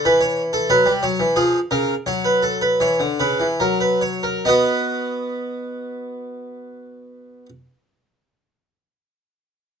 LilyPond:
<<
  \new Staff \with { instrumentName = "Harpsichord" } { \time 3/4 \key fis \phrygian \tempo 4 = 67 b'16 cis''8 a'16 b'8 cis''8 gis'8 ais'8 | cis''16 b'16 a'16 b'16 cis''8 b'8 ais'16 b'16 cis''16 ais'16 | <fis' b' dis''>2.~ | <fis' b' dis''>2. | }
  \new Staff \with { instrumentName = "Harpsichord" } { \clef bass \time 3/4 \key fis \phrygian e4 fis16 g16 fis16 e16 eis8 cis8 | fis4 e16 d16 cis16 e16 fis4 | b2.~ | b2. | }
>>